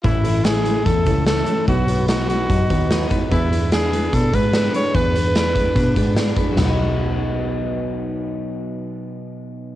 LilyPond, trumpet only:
\new Staff \with { instrumentName = "Trumpet" } { \time 4/4 \key b \mixolydian \tempo 4 = 148 e'4 gis'4 a'4 a'4 | fis'4 fis'8 fis'2 r8 | e'4 gis'4 a'8 b'4 cis''8 | b'2. r4 |
r1 | r1 | }